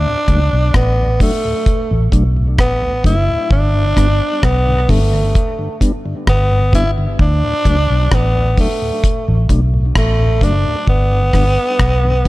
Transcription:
Already playing: tenor saxophone D4
0.07 tonewheel organ D2 A2
0.28 fingered electric bass C#2, tonewheel organ F#3 A3 D4, kick, closed hi-hat
0.53 fingered electric bass B1
0.74 fingered electric bass A1, tenor saxophone B3, kick, cross-stick
1.00 tonewheel organ D2 A2
1.20 tonewheel organ F#3 A3 D4, tenor saxophone A3, kick, open hi-hat
1.45 tonewheel organ D2 A2
1.66 kick, hi-hat pedal
1.91 fingered electric bass A1, tonewheel organ D2 A2
2.12 fingered electric bass B1, tonewheel organ F#3 A3 D4, kick, closed hi-hat
2.37 tonewheel organ D2 A2
2.58 fingered electric bass A1, tenor saxophone B3, kick, cross-stick
2.83 tonewheel organ D2 A2
3.04 fingered electric bass F#1, tonewheel organ F#3 A3 D4, tenor saxophone E4, kick, closed hi-hat
3.29 tonewheel organ D2 A2
3.51 fingered electric bass G1, tenor saxophone D4, kick
3.74 tonewheel organ G2 D3
3.96 fingered electric bass G1, tonewheel organ G3 B3 D4, kick, cross-stick, closed hi-hat
4.43 fingered electric bass B1, tenor saxophone B3, kick, cross-stick
4.67 tonewheel organ G2 D3
4.88 fingered electric bass G1, tonewheel organ G3 B3 D4, tenor saxophone A3, kick, open hi-hat
5.13 tonewheel organ G2 D3
5.35 kick, hi-hat pedal
5.59 tonewheel organ G2 D3
5.81 tonewheel organ G3 B3 D4, kick, closed hi-hat
6.05 tonewheel organ G2 D3
6.27 fingered electric bass G1, tenor saxophone B3, kick, cross-stick
6.51 tonewheel organ G2 D3
6.73 tonewheel organ G3 B3 D4, tenor saxophone E4, kick, closed hi-hat
6.98 tonewheel organ G2 D3
7.19 fingered electric bass D2, tenor saxophone D4, kick
7.44 tonewheel organ D2 A2
7.65 fingered electric bass C#2, tonewheel organ F#3 A3 D4, kick, closed hi-hat
7.90 fingered electric bass B1
8.12 fingered electric bass A1, tenor saxophone B3, kick, cross-stick
8.36 tonewheel organ D2 A2
8.57 tonewheel organ F#3 A3 D4, tenor saxophone A3, kick, open hi-hat
8.82 tonewheel organ D2 A2
9.04 kick, hi-hat pedal
9.28 fingered electric bass A1, tonewheel organ D2 A2
9.49 fingered electric bass B1, tonewheel organ F#3 A3 D4, kick, closed hi-hat
9.74 tonewheel organ D2 A2
9.95 fingered electric bass A1, tenor saxophone A3, kick, cross-stick
10.20 tonewheel organ D2 A2
10.41 fingered electric bass F#1, tonewheel organ F#3 A3 D4, tenor saxophone D4, kick, closed hi-hat
10.66 tonewheel organ D2 A2
10.87 fingered electric bass G1, tenor saxophone B3, kick
11.12 tonewheel organ G2 D3
11.33 fingered electric bass G1, tonewheel organ G3 B3 D4, kick, cross-stick, open hi-hat
11.79 fingered electric bass B1, kick, cross-stick, hi-hat pedal
12.05 tonewheel organ G2 D3

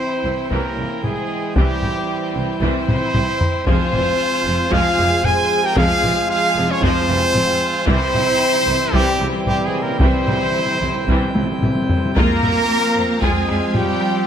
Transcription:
Already playing: timpani C3, trombone section E3 E4, french horn section C4, violin section E4 C5, pipe organ E4 C5 G5, trumpet C5
0.24 cello section C2, double bass section C2, viola section C3 E3
0.50 double bass section C2, cello section C2, viola section E3 G3, french horn section A#3, violin section C#4 A#4, trumpet A#4, taiko
0.77 cello section C2, double bass section C2, viola section C#3 F3
1.02 cello section C2, double bass section C2, viola section E3 G3, french horn section G#3, violin section C4 G#4, trumpet G#4, taiko low-mid
1.55 double bass section C2, cello section C2, viola section E3 G3, french horn section G3, violin section C4 G4, trumpet G4, taiko
1.82 double bass section C2, cello section C2, viola section C#3 F3, taiko low-mid
2.35 double bass section C2, cello section C2, viola section C3 E3
2.61 double bass section C2, cello section C2, viola section E3 G3, french horn section C4, violin section E4 C5, trumpet C5, taiko
2.88 cello section C2, double bass section C2, viola section C#3 F3, taiko low-mid
3.14 double bass section C2, cello section C2, viola section E3 G3, taiko low-mid
3.41 taiko low
3.66 double bass section F1, timpani F2, cello section F2, trombone section F3 G#3, viola section F3 G#3, french horn section C4, pipe organ C4 F4 C5 G#5, violin section F4 C5, trumpet C5, taiko
3.93 double bass section F1, cello section F2, viola section E3 G3, taiko low-mid
4.45 double bass section F1, cello section F2, viola section C3 F3
4.71 double bass section F1, cello section F2, viola section F3 G#3, french horn section F4, violin section G#4 F5, trumpet F5, taiko
4.98 double bass section F1, cello section F2, viola section E3 G3
5.24 double bass section F1, cello section F2, viola section F3 G#3, french horn section G#4, violin section C5 G#5, trumpet G#5, taiko low-mid
5.62 french horn section G4, violin section A#4 G5, trumpet G5
5.77 double bass section F1, cello section F2, viola section F3 G#3, french horn section F4, violin section G#4 F5, trumpet F5, taiko
6.03 double bass section F1, cello section F2, viola section E3 G3, taiko low-mid
6.29 french horn section F4, violin section G#4 F5, trumpet F5
6.56 double bass section F1, cello section F2, viola section C3 F3
6.68 french horn section C#4, violin section F4 C#5, trumpet C#5
6.81 double bass section F1, cello section F2, viola section F3 G#3, french horn section C4, violin section F4 C5, trumpet C5, taiko
7.08 double bass section F1, cello section F2, viola section E3 G3
7.35 double bass section F1, cello section F2, viola section F3 G#3, taiko low-mid
7.86 cello section C2, double bass section C2, trombone section E3 G3, viola section E3 G3, french horn section C4, pipe organ C4 E4 C5 G5, violin section E4 C5, trumpet C5, taiko
8.03 timpani C3
8.10 timpani C3, viola section C#3, taiko low-mid
8.14 cello section C2, double bass section C2, timpani C3, viola section F3
8.25 timpani C3
8.33 timpani C3
8.40 timpani C3
8.55 timpani C3
8.63 timpani C3
8.67 cello section C2, double bass section C2, viola section C3 E3, timpani C3
8.78 timpani C3
8.85 timpani C3
8.93 double bass section C2, cello section C2, timpani C3, viola section E3 G3, french horn section G3, violin section C4 G4, trumpet G4, taiko
9.08 timpani C3
9.15 timpani C3
9.20 double bass section C2, cello section C2, timpani C3, viola section C#3 F3
9.29 timpani C3
9.38 timpani C3
9.45 cello section C2, double bass section C2, timpani C3, viola section E3 G3, french horn section G3, violin section C4 G4, trumpet G4, taiko low-mid
9.52 timpani C3
9.60 timpani C3, violin section C4
9.65 timpani C3, french horn section G#3, violin section G#4, trumpet G#4
9.75 timpani C3
9.81 timpani C3, french horn section A#3, violin section C#4 A#4, trumpet A#4
9.91 timpani C3
9.98 cello section C2, double bass section C2, timpani C3, viola section E3 G3, french horn section C4, violin section E4 C5, trumpet C5, taiko
10.06 timpani C3
10.13 timpani C3
10.21 timpani C3
10.27 double bass section C2, cello section C2, timpani C3, viola section C#3 F3, taiko low-mid
10.37 timpani C3
10.45 timpani C3
10.52 timpani C3
10.59 timpani C3
10.66 timpani C3
10.75 timpani C3
10.81 double bass section C2, cello section C2, timpani C3, viola section C3 E3
10.89 timpani C3
10.97 timpani C3
11.04 double bass section C2, timpani C3
11.08 cello section C2, viola section E3 G3, taiko
11.12 timpani C3
11.20 timpani C3
11.28 timpani C3
11.35 double bass section C2, cello section C2, timpani C3, viola section C#3 F3, taiko high
11.43 timpani C3
11.51 timpani C3
11.58 double bass section C2, timpani C3, viola section E3 G3
11.63 cello section C2, timpani C3, taiko low-mid
11.75 timpani C3
11.82 timpani C3
11.89 timpani C3, taiko low
11.97 timpani C3
12.05 timpani C3
12.15 double bass section F2, trombone section F3 C4, viola section G#3 F4, french horn section A#3, cello section A#3, pipe organ C4 F4 C5 F5, violin section A#4 A#5, trumpet A#4, flute section A#4, taiko
12.43 double bass section F2, viola section G3 E4, taiko low-mid
12.96 double bass section F2, viola section F3 C4
13.21 double bass section F2, viola section G#3 F4, french horn section G#3, cello section G#3, trumpet G#4, flute section G#4, violin section G#4 G#5, taiko
13.48 double bass section F2, viola section G3 E4, taiko rim
13.74 double bass section F2, cello section G3, french horn section G3, viola section G#3 F4, flute section G4, trumpet G4, violin section G4 G5, taiko low-mid
14.01 taiko rim

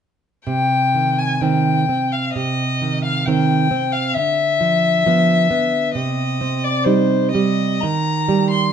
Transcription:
0.47 nylon-string guitar C3, violin G5
0.95 nylon-string guitar D#3
1.19 violin G#5
1.41 nylon-string guitar D#3 C4, violin G5
1.89 nylon-string guitar C4
2.12 violin F5
2.34 nylon-string guitar C3, violin D#5
2.82 nylon-string guitar D#3
3.05 violin F5
3.26 nylon-string guitar D#3 C4, violin G5
3.71 nylon-string guitar C4
3.93 violin F5
4.14 nylon-string guitar D3, violin E5
4.60 nylon-string guitar F3
5.06 nylon-string guitar F3 B3
5.51 nylon-string guitar B3
5.95 nylon-string guitar C3, violin D#5
6.41 nylon-string guitar C4
6.64 violin D5
6.84 nylon-string guitar G3 D#4, violin C5
7.33 nylon-string guitar G3, violin D#5
7.81 nylon-string guitar D#3, violin A#5
8.28 nylon-string guitar G3
8.51 violin C6

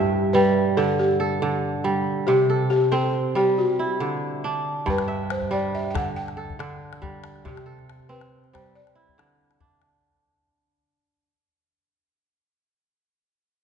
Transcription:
Already playing: kora G2 A3 E5, balafon G4
0.33 kora G3, balafon B4
0.77 kora D3, balafon A4
0.99 balafon G4
1.20 kora A4
1.42 kora D3
1.84 kora G3
2.27 kora C3, balafon G4
2.50 kora A4
2.70 balafon G4
2.92 kora C4, balafon A4
3.35 kora G3, balafon G4
3.58 balafon F#4
3.79 kora E4
4.00 kora D3
4.44 kora D4
4.86 kora G2, balafon B4, calabash thump
4.98 calabash click
5.08 kora E5
5.30 balafon C5, calabash click
5.42 calabash thump
5.51 kora G3, balafon D5
5.75 balafon E5
5.90 balafon G5
5.94 kora D3, balafon F#5, calabash thump, calabash click
6.16 balafon G5
6.28 calabash click
6.37 kora A4, calabash click
6.50 calabash thump
6.59 kora D3, calabash click
6.93 calabash click
7.02 kora G3, calabash thump, calabash click
7.24 calabash click
7.36 calabash click
7.45 kora C3, balafon G4, calabash thump, calabash click
7.57 calabash click
7.66 kora A4
7.79 calabash click
7.90 calabash click
7.99 calabash thump
8.09 kora C4, balafon B4, calabash click
8.21 calabash click
8.44 calabash click
8.53 kora G3, balafon C5, calabash thump, calabash click
8.66 calabash click
8.75 balafon D5, calabash click
8.87 calabash click
8.95 kora E4, calabash click
9.09 calabash thump
9.18 kora D3, calabash click
9.51 calabash click
9.60 kora D4, calabash thump, calabash click
9.72 calabash click
9.82 calabash click

